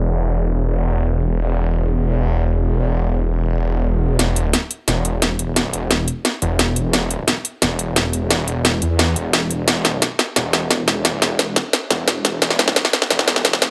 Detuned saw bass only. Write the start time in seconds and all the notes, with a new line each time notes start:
Already playing: E1
4.19 E1
4.88 E1
5.39 E1
5.73 E1
6.42 E1
6.94 E1
7.62 E1
8.13 E1
8.48 E1
8.82 E2
9.16 E1
9.33 E1
9.51 E1
9.68 E1
10.36 E1
10.88 E1
11.22 E1
11.91 E1
12.42 E1
13.11 E1
13.62 E1